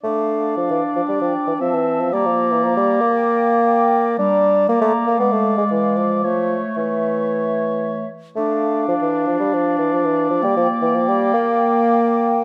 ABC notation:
X:1
M:4/4
L:1/16
Q:1/4=116
K:Dm
V:1 name="Flute section"
f8 g4 a4 | b4 b4 g4 g4 | b4 b4 f8 | e4 e8- e2 z2 |
f16 | g16 |]
V:2 name="Oboe"
d12 e4 | d12 d4 | d4 d4 d8 | ^c4 c8- c2 z2 |
d16- | d16 |]
V:3 name="Clarinet"
D12 C4 | B,16 | G,4 B,4 ^G,8 | A,12- A,2 z2 |
D16 | B,16 |]
V:4 name="Bassoon" clef=bass
A,4 F, E,2 F, G, F,2 E, F, E,2 F, | G, F,2 E, F, G,2 B,8- B, | D4 B, A,2 B, =B, A,2 ^G, E,2 F,2 | F,3 z E,8- E,2 z2 |
A,4 F, E,2 F, G, F,2 E, F, E,2 F, | G, F,2 E, F, G,2 B,8- B, |]